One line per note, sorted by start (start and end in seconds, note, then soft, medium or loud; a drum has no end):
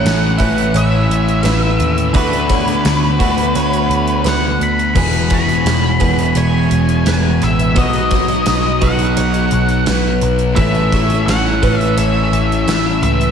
0.00 0.37 A2 medium
0.00 0.37 E3 medium
0.00 0.40 A3 loud
0.00 0.38 C#4 loud
0.00 0.37 E4 loud
0.00 0.38 C#5 medium
0.00 0.79 F#5 medium
0.05 0.38 A1 loud
0.05 snare loud
0.05 closed hi-hat loud
0.38 0.73 A1 medium
0.38 2.14 A2 medium
0.38 2.13 E3 medium
0.38 2.13 A3 medium
0.38 2.13 C#4 medium
0.38 2.12 E4 medium
0.38 0.74 B4 medium
0.38 kick medium
0.38 closed hi-hat medium
0.58 closed hi-hat medium
0.74 1.08 A1 medium
0.74 1.43 C#5 medium
0.74 2.20 E5 loud
0.74 closed hi-hat loud
1.09 1.43 A1 loud
1.09 closed hi-hat medium
1.28 closed hi-hat medium
1.43 1.78 A1 medium
1.43 2.13 B4 medium
1.43 snare loud
1.43 closed hi-hat medium
1.80 2.13 D#2 medium
1.80 closed hi-hat medium
1.98 closed hi-hat medium
2.13 2.82 D2 medium
2.13 3.17 D3 medium
2.13 3.18 A3 medium
2.13 3.20 B3 loud
2.13 4.94 D4 loud
2.13 3.18 F#4 loud
2.13 2.49 B4 medium
2.13 4.32 B4 medium
2.13 kick loud
2.13 closed hi-hat loud
2.33 closed hi-hat medium
2.49 3.20 C#5 medium
2.49 kick loud
2.49 closed hi-hat medium
2.68 closed hi-hat medium
2.85 3.18 D2 loud
2.85 snare loud
2.85 closed hi-hat loud
3.19 3.54 D2 medium
3.19 4.95 D3 medium
3.19 4.94 A3 medium
3.19 4.97 B3 medium
3.19 4.93 F#4 medium
3.19 3.55 B4 medium
3.19 kick medium
3.19 closed hi-hat medium
3.38 closed hi-hat medium
3.55 3.88 D2 medium
3.55 4.24 C#5 medium
3.55 closed hi-hat loud
3.73 closed hi-hat medium
3.89 4.23 D2 medium
3.89 closed hi-hat medium
4.08 closed hi-hat soft
4.24 4.58 D2 medium
4.24 4.95 B4 medium
4.24 snare loud
4.24 closed hi-hat loud
4.28 4.63 F#5 loud
4.60 4.93 D2 medium
4.60 4.96 B5 loud
4.60 closed hi-hat medium
4.79 closed hi-hat soft
4.95 5.63 E1 medium
4.95 5.98 E2 medium
4.95 5.98 B2 loud
4.95 5.99 E3 medium
4.95 5.99 G#3 loud
4.95 6.00 B3 loud
4.95 5.99 G#4 loud
4.95 5.33 B4 medium
4.95 5.33 B5 loud
4.95 kick loud
4.95 crash loud
5.13 closed hi-hat medium
5.30 6.00 C#5 medium
5.30 kick medium
5.30 closed hi-hat medium
5.34 6.40 B5 loud
5.49 closed hi-hat soft
5.65 5.99 E1 loud
5.65 snare loud
5.65 closed hi-hat loud
6.00 6.34 E1 medium
6.00 7.75 E2 medium
6.00 7.74 B2 medium
6.00 7.74 E3 medium
6.00 7.74 G#3 medium
6.00 7.74 B3 medium
6.00 7.73 G#4 medium
6.00 6.36 B4 medium
6.00 kick medium
6.00 closed hi-hat medium
6.19 closed hi-hat medium
6.35 6.69 E1 medium
6.35 7.06 C#5 medium
6.35 7.45 G#5 loud
6.35 closed hi-hat loud
6.71 7.04 E1 medium
6.71 closed hi-hat medium
6.89 closed hi-hat soft
7.06 7.40 E1 medium
7.06 7.75 B4 medium
7.06 snare loud
7.06 closed hi-hat medium
7.42 7.75 A1 medium
7.42 7.78 E5 loud
7.42 snare soft
7.42 closed hi-hat medium
7.59 closed hi-hat medium
7.75 8.43 B1 medium
7.75 8.78 B2 medium
7.75 8.79 F#3 medium
7.75 8.80 B3 loud
7.75 8.80 D#4 loud
7.75 8.80 F#4 loud
7.75 8.11 B4 loud
7.75 8.85 D#5 medium
7.75 kick loud
7.75 closed hi-hat loud
7.93 closed hi-hat medium
8.11 8.81 C#5 medium
8.11 kick loud
8.11 closed hi-hat medium
8.28 closed hi-hat medium
8.46 8.80 B1 loud
8.46 snare loud
8.46 closed hi-hat loud
8.81 9.15 B1 medium
8.81 10.55 B2 medium
8.81 10.55 F#3 medium
8.81 10.55 B3 medium
8.81 10.54 D#4 loud
8.81 10.54 F#4 medium
8.81 9.16 B4 medium
8.81 9.83 F#5 medium
8.81 kick medium
8.81 closed hi-hat medium
8.99 closed hi-hat medium
9.17 9.50 B1 loud
9.17 9.86 C#5 medium
9.17 closed hi-hat loud
9.34 closed hi-hat soft
9.51 9.85 B1 medium
9.51 closed hi-hat medium
9.69 closed hi-hat medium
9.86 10.20 B1 medium
9.86 10.56 B4 medium
9.86 snare loud
9.86 closed hi-hat medium
10.21 10.55 B1 medium
10.21 closed hi-hat medium
10.39 closed hi-hat soft
10.55 11.24 A1 loud
10.55 11.59 A2 medium
10.55 11.59 E3 medium
10.55 11.59 A3 medium
10.55 11.60 C#4 loud
10.55 11.61 A4 loud
10.55 10.91 B4 medium
10.55 11.28 E5 loud
10.55 kick loud
10.55 closed hi-hat loud
10.75 closed hi-hat soft
10.92 11.62 C#5 medium
10.92 kick loud
10.92 closed hi-hat medium
11.10 closed hi-hat soft
11.26 11.60 A1 loud
11.26 11.80 F#5 loud
11.26 snare loud
11.26 closed hi-hat loud
11.62 11.95 A1 medium
11.62 13.31 A2 medium
11.62 13.31 E3 medium
11.62 13.31 A3 medium
11.62 13.31 C#4 medium
11.62 13.31 A4 loud
11.62 11.97 B4 medium
11.62 kick medium
11.62 closed hi-hat medium
11.80 11.97 E5 loud
11.80 closed hi-hat medium
11.97 12.30 A1 medium
11.97 12.67 C#5 medium
11.97 13.03 E5 loud
11.97 closed hi-hat loud
12.32 12.65 A1 medium
12.32 closed hi-hat medium
12.52 closed hi-hat soft
12.67 13.00 A1 medium
12.67 13.31 B4 medium
12.67 snare loud
12.67 closed hi-hat medium
13.02 13.31 C#2 medium
13.02 13.31 E5 loud
13.02 closed hi-hat medium
13.21 closed hi-hat medium